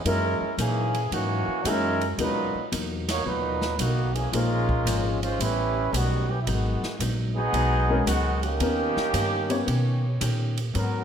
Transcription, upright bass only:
0.05 0.38 F#2 medium
0.40 muted upright bass stroke soft
0.57 1.10 A#2 medium
1.11 1.45 G#2 medium
1.47 muted upright bass stroke soft
1.64 2.16 F#2 medium
2.18 2.52 D#2 medium
2.54 muted upright bass stroke soft
2.72 3.24 E2 medium
3.26 3.77 D#2 medium
3.79 4.31 B1 medium
4.32 4.84 A#1 medium
4.85 5.38 G#1 medium
5.39 5.91 A1 medium
5.93 6.45 B1 loud
6.47 6.80 G#1 medium
6.99 7.51 A#1 medium
7.53 8.05 B1 medium
8.06 8.58 C#2 loud
8.60 8.93 D#2 medium
8.96 muted upright bass stroke soft
9.13 9.65 G2 medium
9.67 10.19 B2 medium
10.21 10.73 A#2 loud
10.75 11.04 G#2 medium

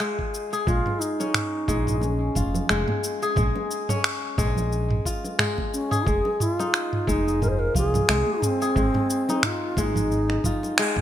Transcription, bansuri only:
0.67 1.01 F4 loud
1.00 1.99 D#4 loud
2.00 2.98 C#4 medium
2.00 2.05 D#4 medium
5.73 6.09 C#4 medium
6.07 6.43 G#4 loud
6.42 6.53 E4 loud
6.53 7.11 F4 loud
7.09 7.42 D#4 medium
7.43 7.49 A#4 loud
7.49 7.61 C5 medium
7.59 7.76 A#4 loud
7.78 8.46 G#4 loud
8.45 9.47 C4 loud
9.45 9.79 F4 medium
9.79 9.85 F4 medium
9.84 11.01 D#4 medium

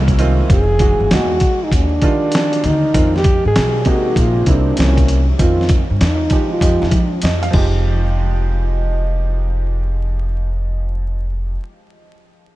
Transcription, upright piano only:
0.00 0.45 A#3 medium
0.00 0.18 C4 medium
0.00 0.45 C#4 medium
0.00 0.49 E4 medium
0.18 0.57 D#3 medium
0.18 0.57 G#3 medium
0.18 0.58 C4 medium
0.18 0.58 F4 medium
0.80 1.09 E3 medium
0.80 1.09 G#3 medium
0.80 1.10 D#4 medium
0.80 1.11 F#4 medium
1.10 1.35 E3 medium
1.10 1.35 G#3 medium
1.10 1.35 D#4 medium
1.10 1.36 F#4 medium
2.02 2.90 D#3 medium
2.02 2.90 G3 medium
2.02 2.90 D4 medium
2.02 2.91 F4 medium
2.94 3.18 D#3 medium
2.94 3.19 G#3 medium
2.94 3.19 C4 medium
2.94 3.19 F4 medium
3.85 4.45 C3 medium
3.85 4.73 G#3 medium
3.85 4.46 A#3 medium
3.85 4.74 D#4 medium
4.47 4.77 C3 medium
4.47 4.77 A#3 medium
4.47 4.86 C4 medium
4.47 4.77 E4 medium
4.77 5.17 C3 medium
4.77 5.16 C#3 medium
4.77 5.17 A#3 medium
4.77 5.17 E4 medium
5.39 5.78 D#3 medium
5.39 5.78 G#3 soft
5.39 5.78 C4 medium
5.39 5.78 F4 medium
6.31 6.60 F3 medium
6.31 6.60 G#3 medium
6.31 6.61 D#4 medium
6.31 6.61 G4 medium
6.61 7.00 F3 medium
6.61 7.00 G#3 medium
6.61 7.01 D#4 medium
6.61 7.01 G4 medium
7.23 7.42 D#5 medium
7.43 7.53 F5 medium
7.51 11.52 F3 medium
7.51 11.54 G#3 medium
7.51 11.56 D#4 medium
7.57 11.58 G4 medium

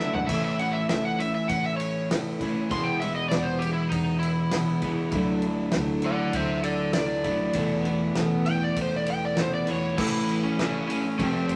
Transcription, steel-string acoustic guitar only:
0.00 0.30 A3 soft
0.00 0.30 D4 soft
0.00 0.29 E4 medium
0.30 0.60 A2 medium
0.30 0.60 E3 medium
0.30 0.60 A3 medium
0.30 0.59 C#4 medium
0.30 0.58 E4 medium
0.60 0.89 A3 soft
0.60 0.89 C#4 soft
0.60 0.90 E4 soft
0.89 1.20 A2 medium
0.89 1.20 E3 medium
0.89 1.18 A3 medium
0.89 1.17 C#4 medium
0.89 1.17 E4 medium
1.18 1.49 A3 soft
1.18 1.50 C#4 medium
1.18 1.49 E4 soft
1.50 2.10 E3 medium
1.50 2.09 A3 medium
1.50 2.10 C#4 medium
1.50 2.12 E4 medium
2.10 2.41 A2 medium
2.10 2.41 E3 medium
2.10 2.41 A3 medium
2.10 2.40 C#4 medium
2.10 2.38 E4 medium
2.39 2.69 A3 soft
2.39 2.70 C#4 medium
2.39 2.70 E4 medium
2.69 3.00 E2 medium
2.69 3.01 B2 medium
2.69 3.01 E3 medium
2.69 3.01 G#3 medium
2.69 3.01 B3 medium
2.69 3.00 E4 medium
3.02 3.30 E3 soft
3.02 3.29 G#3 soft
3.02 3.30 B3 soft
3.02 3.31 E4 medium
3.30 3.61 E2 medium
3.30 3.61 B2 medium
3.30 3.62 E3 medium
3.30 3.61 G#3 medium
3.30 3.62 B3 medium
3.30 3.61 E4 medium
3.62 3.92 E3 soft
3.62 3.92 G#3 soft
3.62 3.93 B3 medium
3.62 3.93 E4 medium
3.93 4.52 E3 medium
3.93 4.52 G#3 medium
3.93 4.52 B3 medium
4.51 4.83 E2 medium
4.51 4.83 B2 medium
4.51 4.83 E3 medium
4.51 4.84 G#3 medium
4.51 4.83 B3 medium
4.51 4.83 E4 medium
4.84 5.14 E3 soft
4.84 5.14 G#3 soft
4.84 5.14 B3 medium
4.84 5.14 E4 medium
5.14 5.44 D3 medium
5.14 5.44 F#3 medium
5.14 5.45 A3 loud
5.14 5.45 D4 loud
5.14 5.43 E4 medium
5.44 5.75 A3 soft
5.44 5.75 D4 medium
5.44 5.75 E4 medium
5.75 6.05 D3 medium
5.75 6.05 F#3 medium
5.75 6.06 A3 medium
5.75 6.05 D4 medium
5.75 6.04 E4 medium
6.05 6.36 A3 soft
6.05 6.36 D4 soft
6.05 6.35 E4 medium
6.37 6.96 F#3 medium
6.37 6.98 A3 medium
6.37 6.97 D4 medium
6.37 6.98 E4 medium
6.97 7.27 D3 medium
6.97 7.27 F#3 medium
6.97 7.27 A3 medium
6.97 7.26 D4 medium
6.97 7.25 E4 loud
7.26 7.56 A3 soft
7.26 7.57 D4 medium
7.26 7.56 E4 medium
7.56 7.87 E2 medium
7.56 7.86 B2 medium
7.56 7.86 E3 medium
7.56 7.86 A3 medium
7.56 7.84 B3 medium
7.56 7.84 E4 loud
7.85 8.16 E3 medium
7.85 8.16 A3 medium
7.85 8.16 B3 medium
7.85 8.16 E4 medium
8.15 8.46 E2 loud
8.15 8.47 B2 medium
8.15 8.47 E3 loud
8.15 8.47 A3 medium
8.15 8.46 B3 medium
8.15 8.46 E4 loud
8.47 8.75 E3 soft
8.47 8.76 A3 soft
8.47 8.77 B3 medium
8.47 8.77 E4 medium
8.76 9.34 E3 medium
8.76 9.34 A3 medium
8.76 9.35 B3 medium
8.76 9.36 E4 medium
9.35 9.67 E2 medium
9.35 9.67 B2 medium
9.35 9.67 E3 medium
9.35 9.67 A3 medium
9.35 9.66 B3 medium
9.35 9.65 E4 medium
9.66 9.97 E3 soft
9.66 9.97 A3 soft
9.66 9.97 B3 medium
9.66 9.97 E4 medium
9.98 10.59 A2 medium
9.98 10.57 E3 medium
9.98 10.58 A3 medium
9.98 10.58 C#4 medium
9.98 10.59 E4 medium
10.58 10.89 E3 medium
10.58 10.89 A3 medium
10.58 10.87 C#4 medium
10.58 10.86 E4 medium
10.87 11.18 A3 soft
10.87 11.19 C#4 medium
10.87 11.18 E4 medium
11.19 11.56 F3 medium
11.19 11.56 A3 medium
11.19 11.56 C4 medium
11.19 11.56 G4 medium

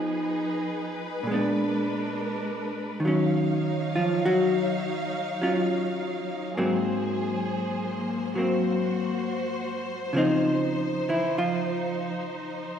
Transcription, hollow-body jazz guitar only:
0.00 1.25 F3 soft
0.00 1.26 B3 soft
0.00 1.26 D#4 medium
0.00 1.26 G#4 medium
1.23 3.01 A#2 soft
1.23 3.03 G#3 soft
1.31 3.05 B3 soft
1.31 3.06 D4 soft
3.00 6.56 D#3 soft
3.05 3.96 F#3 soft
3.05 5.42 C#4 soft
3.96 4.22 F3 soft
3.96 4.22 F4 medium
4.26 5.08 F#3 medium
4.26 5.08 F#4 medium
5.42 6.57 F#3 soft
5.42 6.57 C#4 soft
5.42 6.58 F4 soft
6.57 10.15 G#2 soft
6.57 8.34 F#3 soft
6.57 8.37 A#3 soft
6.57 8.38 C4 soft
8.35 10.14 F#3 soft
8.35 10.16 A#3 soft
8.35 10.15 C4 soft
10.13 12.79 C#3 soft
10.13 11.09 F3 soft
10.13 12.79 C4 soft
10.18 12.79 D#4 medium
11.09 11.35 E3 soft
11.09 11.35 E4 soft
11.38 12.21 F3 soft
11.38 12.21 F4 medium

